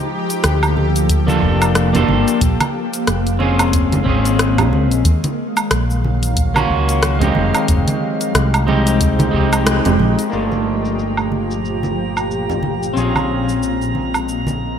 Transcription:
Already playing: F3 A#3 G4 A4
0.30 closed hi-hat, shaker
0.44 D2, cross-stick, closed hi-hat, shaker
0.63 low woodblock, shaker
0.77 high conga
0.96 closed hi-hat, shaker
1.09 kick, closed hi-hat, shaker
1.27 A#3 D4 F4 A4, high conga, shaker
1.42 F1, kick
1.62 closed hi-hat, low woodblock, shaker
1.75 cross-stick, closed hi-hat, shaker
1.93 A#3 D4 F4 A4, closed hi-hat, low conga, shaker
2.09 G1, high conga
2.28 closed hi-hat, shaker
2.41 A#1 G#3, kick, closed hi-hat, shaker
2.60 closed hi-hat, high conga, low woodblock, shaker
2.94 closed hi-hat, shaker
3.07 F1, cross-stick, closed hi-hat, shaker
3.27 closed hi-hat, shaker
3.39 C4 C#4 F4 G#4, high conga
3.59 closed hi-hat, low woodblock, shaker
3.73 kick, closed hi-hat, shaker
3.92 closed hi-hat, high conga, shaker
4.04 G#1 C4 C#4 F4, kick
4.09 G#4
4.25 closed hi-hat, shaker
4.39 cross-stick, closed hi-hat, shaker
4.58 closed hi-hat, low conga, low woodblock, shaker
4.72 C#2, high conga
4.91 A#1, closed hi-hat, shaker
5.05 D#2 D#3 F#3 F5, kick, closed hi-hat, shaker
5.24 closed hi-hat, high conga, shaker
5.57 closed hi-hat, low woodblock, shaker
5.71 A#1, cross-stick, closed hi-hat, shaker
5.90 shaker
6.04 high conga
6.23 closed hi-hat, shaker
6.37 kick, closed hi-hat, shaker
6.54 A#3 C#4 F4 F#4, high conga, low woodblock, shaker
6.70 C#2, kick
6.89 closed hi-hat, shaker
7.03 cross-stick, closed hi-hat, shaker
7.19 G#3 C4 D#4, closed hi-hat, low conga, shaker
7.24 G4
7.35 F1 F3 G#3 D#4 G4, high conga
7.55 closed hi-hat, low woodblock, shaker
7.68 F1, kick, closed hi-hat, shaker
7.88 closed hi-hat, high conga, shaker
8.21 closed hi-hat, shaker
8.35 C2, cross-stick, closed hi-hat, shaker
8.54 closed hi-hat, low woodblock, shaker
8.67 G#3 C4 D#4 G4, high conga
8.87 closed hi-hat, shaker
9.01 kick, closed hi-hat, shaker
9.19 closed hi-hat, high conga, shaker
9.31 C2 G#3 C4 D#4, kick
9.36 G4
9.53 closed hi-hat, low woodblock, shaker
9.67 cross-stick, closed hi-hat, shaker
9.85 F1, closed hi-hat, low conga, shaker
9.99 A#1, high conga
10.19 closed hi-hat, shaker
10.30 G1 A#2 F3 A#3 D4 F4 G4 A#5, shaker
10.35 A3
10.52 high conga, shaker
10.85 shaker
10.99 shaker
11.17 low woodblock, shaker
11.32 high conga
11.51 shaker
11.65 shaker
11.83 high conga, shaker
12.17 low woodblock, shaker
12.31 shaker
12.49 low conga, shaker
12.63 high conga
12.83 shaker
12.93 A#1 G#3 C4 C#4 F4, shaker
12.99 G#4
13.15 high conga, low woodblock, shaker
13.49 shaker
13.63 shaker
13.82 shaker
13.95 high conga
14.14 low woodblock, shaker
14.29 shaker
14.47 high conga, shaker

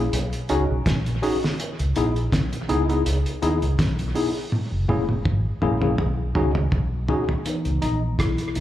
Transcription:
0.13 B1, closed hi-hat
0.33 closed hi-hat
0.49 C#2 C#4 D#4 F#4 G#4, closed hi-hat
0.70 B1
0.86 A#1, kick, snare, closed hi-hat
1.06 closed hi-hat
1.22 C#4 D#4 F#4 G#4, open hi-hat
1.44 snare
1.60 closed hi-hat
1.79 C#2, closed hi-hat
1.96 A#1 B3 D#4 E4 G#4, closed hi-hat
2.16 closed hi-hat
2.32 B1, kick, snare, closed hi-hat
2.53 closed hi-hat
2.69 C#2 B3 D#4 E4 G#4, closed hi-hat
2.89 B3 D#4 E4 G#4, closed hi-hat
3.06 C#2, closed hi-hat
3.26 closed hi-hat
3.42 D#2 B3 D#4 E4 G#4, closed hi-hat
3.62 C#2, closed hi-hat
3.79 B1, kick, snare, closed hi-hat
3.99 closed hi-hat
4.15 B3 D#4 E4 G#4, open hi-hat
4.52 high tom
4.72 F#1
4.89 A#3 C#4 E4 G#4, high tom
5.09 high tom
5.25 G#1, kick, mid tom
5.62 A#1 A#3 C#4 E4 G#4, mid tom
5.82 A#3 C#4 E4 G#4, mid tom
5.98 B1, mid tom
6.35 C#2 C#4 D#4 F#4 G#4, mid tom
6.55 mid tom
6.72 B1, kick, floor tom
7.08 C#4 D#4 F#4 G#4, floor tom
7.29 floor tom
7.45 E3 B3 D#4, closed hi-hat
7.65 C#2, closed hi-hat
7.82 A#1 D#4, closed hi-hat
8.19 B1 E4, kick, cross-stick, closed hi-hat
8.38 closed hi-hat
8.55 C#2 E3 B3 D#4, closed hi-hat

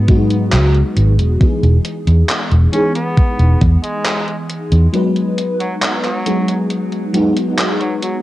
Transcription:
Already playing: G#2 F#3 G#3 B3 D#4 G#4
0.07 F#3 G#3 B3 D#4 F#4, kick, closed hi-hat
0.30 closed hi-hat
0.52 C#2, clap, closed hi-hat
0.75 closed hi-hat
0.97 G#1, closed hi-hat
1.19 E1, closed hi-hat
1.40 E3 G#3 B3 D#4 G#4, muted fingered electric bass stroke, kick, closed hi-hat
1.63 E1, closed hi-hat
1.85 closed hi-hat
2.07 E2, closed hi-hat
2.29 clap, closed hi-hat
2.51 E1, closed hi-hat
2.72 E3 G#3 B3 C#4 D#4 G#4, closed hi-hat
2.95 B3, closed hi-hat
3.17 muted fingered electric bass stroke, kick, closed hi-hat
3.39 E1, closed hi-hat
3.61 E2, kick, closed hi-hat
3.83 G#3, closed hi-hat
4.05 clap, closed hi-hat
4.28 closed hi-hat
4.50 closed hi-hat
4.72 E2, closed hi-hat
4.93 F#3 G#3 B3 D#4 B4, closed hi-hat
5.16 closed hi-hat
5.38 closed hi-hat
5.60 F#3, closed hi-hat
5.82 F#3, clap, closed hi-hat
6.04 F#3, clap, closed hi-hat
6.26 F#3 G#3 B3 D#4 G#4, closed hi-hat
6.48 closed hi-hat
6.70 closed hi-hat
6.92 closed hi-hat
7.13 F#3 G#3 B3 D#4 F#4, closed hi-hat
7.37 closed hi-hat
7.59 clap, closed hi-hat
7.81 F#3, closed hi-hat
8.03 F#3, closed hi-hat

